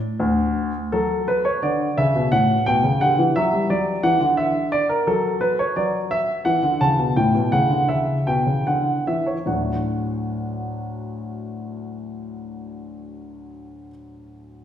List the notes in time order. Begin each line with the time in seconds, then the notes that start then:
0.20 D2
0.92 F#3 F#4 A4
1.28 B4
1.45 C#5
1.63 D3 D5
1.98 C#3 E5
2.16 B2
2.32 A2 F#5
2.66 B2 G5
2.84 C#3
3.01 D3 G4 F#5
3.19 E3
3.36 F#3 E5
3.53 G3
3.70 F#3 D5
4.03 E3 F#5
4.20 D3
4.37 E5
4.72 D5
4.89 A#4
5.07 F#3 F#4 A4
5.41 B4
5.59 C#5
5.76 F#3 D5
6.11 E5
6.45 E3 F#5
6.63 D3
6.81 C#3 A5
6.98 B2
7.16 A2 E4 G5
7.35 B2
7.52 C#3 F#5
7.70 D3
7.89 C#3 E5
8.27 B2 G5
8.46 C#3
8.67 D3 F#5
9.07 E3 E5
9.26 C#5
9.46 D2 A2 F#3 A3 D4 F#4 F#5